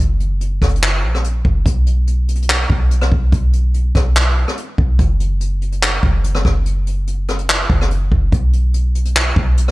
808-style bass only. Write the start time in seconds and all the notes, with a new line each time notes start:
0.00 F#1
0.62 F#1
1.03 A#1
1.45 F#1
1.66 B1
2.70 B1
3.12 B1
3.32 B1
3.95 B1
4.78 B1
4.99 F#1
6.03 F#1
6.45 F#1
7.70 F#1
8.12 F#1
8.32 B1
9.36 B1